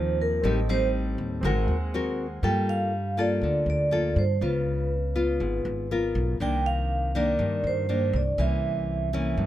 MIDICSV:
0, 0, Header, 1, 5, 480
1, 0, Start_track
1, 0, Key_signature, -2, "minor"
1, 0, Tempo, 496689
1, 426, Time_signature, 4, 2, 24, 8
1, 9145, End_track
2, 0, Start_track
2, 0, Title_t, "Vibraphone"
2, 0, Program_c, 0, 11
2, 0, Note_on_c, 0, 72, 84
2, 161, Note_off_c, 0, 72, 0
2, 208, Note_on_c, 0, 70, 82
2, 430, Note_off_c, 0, 70, 0
2, 453, Note_on_c, 0, 69, 74
2, 672, Note_off_c, 0, 69, 0
2, 677, Note_on_c, 0, 72, 102
2, 817, Note_off_c, 0, 72, 0
2, 2362, Note_on_c, 0, 79, 95
2, 2599, Note_off_c, 0, 79, 0
2, 2603, Note_on_c, 0, 77, 91
2, 3087, Note_off_c, 0, 77, 0
2, 3094, Note_on_c, 0, 74, 87
2, 3563, Note_off_c, 0, 74, 0
2, 3575, Note_on_c, 0, 74, 91
2, 4007, Note_off_c, 0, 74, 0
2, 4045, Note_on_c, 0, 72, 78
2, 4281, Note_off_c, 0, 72, 0
2, 4294, Note_on_c, 0, 71, 74
2, 5681, Note_off_c, 0, 71, 0
2, 6208, Note_on_c, 0, 79, 96
2, 6440, Note_on_c, 0, 77, 97
2, 6443, Note_off_c, 0, 79, 0
2, 6927, Note_off_c, 0, 77, 0
2, 6929, Note_on_c, 0, 74, 87
2, 7411, Note_off_c, 0, 74, 0
2, 7413, Note_on_c, 0, 72, 84
2, 7887, Note_on_c, 0, 74, 77
2, 7894, Note_off_c, 0, 72, 0
2, 8100, Note_off_c, 0, 74, 0
2, 8122, Note_on_c, 0, 76, 80
2, 9145, Note_off_c, 0, 76, 0
2, 9145, End_track
3, 0, Start_track
3, 0, Title_t, "Grand piano"
3, 0, Program_c, 1, 0
3, 0, Control_c, 1, 64, 127
3, 0, Note_on_c, 1, 60, 62
3, 0, Note_on_c, 1, 68, 58
3, 0, Note_on_c, 1, 70, 52
3, 0, Note_on_c, 1, 77, 67
3, 373, Note_off_c, 1, 60, 0
3, 382, Note_off_c, 1, 68, 0
3, 392, Note_off_c, 1, 70, 0
3, 398, Note_on_c, 1, 60, 52
3, 403, Note_off_c, 1, 77, 0
3, 415, Note_on_c, 1, 67, 48
3, 436, Note_on_c, 1, 69, 49
3, 439, Control_c, 1, 64, 0
3, 455, Note_on_c, 1, 75, 61
3, 588, Control_c, 1, 64, 127
3, 1347, Note_off_c, 1, 60, 0
3, 1359, Note_off_c, 1, 67, 0
3, 1362, Note_on_c, 1, 60, 63
3, 1370, Note_off_c, 1, 69, 0
3, 1378, Note_on_c, 1, 68, 61
3, 1380, Note_off_c, 1, 75, 0
3, 1397, Note_on_c, 1, 70, 59
3, 1398, Control_c, 1, 64, 0
3, 1416, Note_on_c, 1, 78, 76
3, 1563, Control_c, 1, 64, 127
3, 2313, Note_off_c, 1, 60, 0
3, 2321, Note_off_c, 1, 68, 0
3, 2331, Note_off_c, 1, 70, 0
3, 2340, Note_off_c, 1, 78, 0
3, 2358, Control_c, 1, 64, 0
3, 9145, End_track
4, 0, Start_track
4, 0, Title_t, "Nylon-string guitar"
4, 0, Program_c, 2, 24
4, 0, Note_on_c, 2, 51, 61
4, 0, Note_on_c, 2, 53, 59
4, 0, Note_on_c, 2, 58, 62
4, 0, Note_on_c, 2, 60, 67
4, 401, Note_off_c, 2, 51, 0
4, 408, Note_off_c, 2, 53, 0
4, 408, Note_off_c, 2, 58, 0
4, 409, Note_off_c, 2, 60, 0
4, 421, Note_on_c, 2, 45, 55
4, 429, Note_on_c, 2, 55, 59
4, 433, Note_on_c, 2, 60, 62
4, 433, Note_on_c, 2, 63, 66
4, 567, Note_off_c, 2, 55, 0
4, 567, Note_off_c, 2, 60, 0
4, 570, Note_off_c, 2, 63, 0
4, 669, Note_on_c, 2, 55, 60
4, 672, Note_on_c, 2, 60, 58
4, 675, Note_on_c, 2, 63, 69
4, 1347, Note_off_c, 2, 55, 0
4, 1349, Note_off_c, 2, 60, 0
4, 1350, Note_off_c, 2, 63, 0
4, 1359, Note_off_c, 2, 45, 0
4, 1394, Note_on_c, 2, 56, 65
4, 1397, Note_on_c, 2, 60, 63
4, 1399, Note_on_c, 2, 66, 58
4, 1403, Note_on_c, 2, 70, 72
4, 1699, Note_off_c, 2, 60, 0
4, 1699, Note_off_c, 2, 66, 0
4, 1703, Note_off_c, 2, 70, 0
4, 1876, Note_on_c, 2, 60, 60
4, 1880, Note_on_c, 2, 66, 60
4, 1886, Note_on_c, 2, 70, 72
4, 2179, Note_off_c, 2, 60, 0
4, 2181, Note_off_c, 2, 66, 0
4, 2183, Note_off_c, 2, 70, 0
4, 2325, Note_off_c, 2, 56, 0
4, 2348, Note_on_c, 2, 55, 53
4, 2350, Note_on_c, 2, 58, 54
4, 2352, Note_on_c, 2, 65, 55
4, 2358, Note_on_c, 2, 69, 60
4, 2822, Note_off_c, 2, 58, 0
4, 2824, Note_off_c, 2, 65, 0
4, 2827, Note_off_c, 2, 69, 0
4, 3067, Note_on_c, 2, 58, 58
4, 3075, Note_on_c, 2, 65, 59
4, 3080, Note_on_c, 2, 69, 64
4, 3282, Note_off_c, 2, 55, 0
4, 3317, Note_on_c, 2, 50, 57
4, 3747, Note_off_c, 2, 58, 0
4, 3751, Note_off_c, 2, 65, 0
4, 3752, Note_off_c, 2, 69, 0
4, 3781, Note_on_c, 2, 58, 55
4, 3790, Note_on_c, 2, 65, 52
4, 3792, Note_on_c, 2, 69, 63
4, 4092, Note_off_c, 2, 58, 0
4, 4096, Note_off_c, 2, 69, 0
4, 4097, Note_off_c, 2, 65, 0
4, 4247, Note_off_c, 2, 50, 0
4, 4265, Note_on_c, 2, 49, 52
4, 4270, Note_on_c, 2, 59, 50
4, 4272, Note_on_c, 2, 65, 55
4, 4744, Note_off_c, 2, 59, 0
4, 4746, Note_off_c, 2, 65, 0
4, 4982, Note_on_c, 2, 59, 64
4, 4983, Note_on_c, 2, 65, 63
4, 5202, Note_off_c, 2, 49, 0
4, 5222, Note_on_c, 2, 44, 56
4, 5665, Note_off_c, 2, 65, 0
4, 5666, Note_off_c, 2, 59, 0
4, 5713, Note_on_c, 2, 59, 63
4, 5719, Note_on_c, 2, 70, 58
4, 5720, Note_on_c, 2, 65, 57
4, 6151, Note_off_c, 2, 59, 0
4, 6153, Note_off_c, 2, 65, 0
4, 6154, Note_off_c, 2, 70, 0
4, 6160, Note_off_c, 2, 44, 0
4, 6187, Note_on_c, 2, 48, 51
4, 6193, Note_on_c, 2, 51, 50
4, 6197, Note_on_c, 2, 58, 52
4, 6199, Note_on_c, 2, 62, 60
4, 6870, Note_off_c, 2, 51, 0
4, 6871, Note_off_c, 2, 62, 0
4, 6873, Note_off_c, 2, 58, 0
4, 6909, Note_on_c, 2, 51, 66
4, 6917, Note_on_c, 2, 58, 60
4, 6921, Note_on_c, 2, 62, 67
4, 7124, Note_off_c, 2, 48, 0
4, 7142, Note_on_c, 2, 43, 57
4, 7589, Note_off_c, 2, 51, 0
4, 7593, Note_off_c, 2, 58, 0
4, 7595, Note_off_c, 2, 62, 0
4, 7623, Note_on_c, 2, 51, 56
4, 7628, Note_on_c, 2, 58, 54
4, 7629, Note_on_c, 2, 62, 58
4, 7935, Note_off_c, 2, 51, 0
4, 7935, Note_off_c, 2, 58, 0
4, 7937, Note_off_c, 2, 62, 0
4, 8080, Note_off_c, 2, 43, 0
4, 8100, Note_on_c, 2, 52, 53
4, 8102, Note_on_c, 2, 48, 49
4, 8110, Note_on_c, 2, 58, 50
4, 8112, Note_on_c, 2, 61, 51
4, 8784, Note_off_c, 2, 52, 0
4, 8787, Note_off_c, 2, 58, 0
4, 8790, Note_off_c, 2, 61, 0
4, 8824, Note_on_c, 2, 52, 60
4, 8828, Note_on_c, 2, 58, 59
4, 8835, Note_on_c, 2, 61, 73
4, 9040, Note_off_c, 2, 48, 0
4, 9059, Note_on_c, 2, 43, 55
4, 9145, Note_off_c, 2, 43, 0
4, 9145, Note_off_c, 2, 52, 0
4, 9145, Note_off_c, 2, 58, 0
4, 9145, Note_off_c, 2, 61, 0
4, 9145, End_track
5, 0, Start_track
5, 0, Title_t, "Upright bass"
5, 0, Program_c, 3, 32
5, 0, Note_on_c, 3, 39, 90
5, 384, Note_off_c, 3, 39, 0
5, 420, Note_on_c, 3, 33, 99
5, 1103, Note_off_c, 3, 33, 0
5, 1142, Note_on_c, 3, 39, 85
5, 1380, Note_on_c, 3, 32, 103
5, 1394, Note_off_c, 3, 39, 0
5, 1605, Note_off_c, 3, 32, 0
5, 1622, Note_on_c, 3, 39, 84
5, 2304, Note_off_c, 3, 39, 0
5, 2345, Note_on_c, 3, 43, 86
5, 3266, Note_off_c, 3, 43, 0
5, 3300, Note_on_c, 3, 38, 82
5, 3525, Note_off_c, 3, 38, 0
5, 3537, Note_on_c, 3, 38, 83
5, 3987, Note_off_c, 3, 38, 0
5, 4021, Note_on_c, 3, 43, 88
5, 4245, Note_off_c, 3, 43, 0
5, 4264, Note_on_c, 3, 37, 86
5, 5186, Note_off_c, 3, 37, 0
5, 5220, Note_on_c, 3, 32, 88
5, 5446, Note_off_c, 3, 32, 0
5, 5460, Note_on_c, 3, 32, 88
5, 5909, Note_off_c, 3, 32, 0
5, 5945, Note_on_c, 3, 35, 94
5, 6168, Note_off_c, 3, 35, 0
5, 6188, Note_on_c, 3, 36, 85
5, 7108, Note_off_c, 3, 36, 0
5, 7139, Note_on_c, 3, 43, 90
5, 7365, Note_off_c, 3, 43, 0
5, 7381, Note_on_c, 3, 43, 87
5, 7829, Note_off_c, 3, 43, 0
5, 7860, Note_on_c, 3, 36, 96
5, 8086, Note_off_c, 3, 36, 0
5, 8099, Note_on_c, 3, 36, 90
5, 9023, Note_off_c, 3, 36, 0
5, 9059, Note_on_c, 3, 43, 86
5, 9145, Note_off_c, 3, 43, 0
5, 9145, End_track
0, 0, End_of_file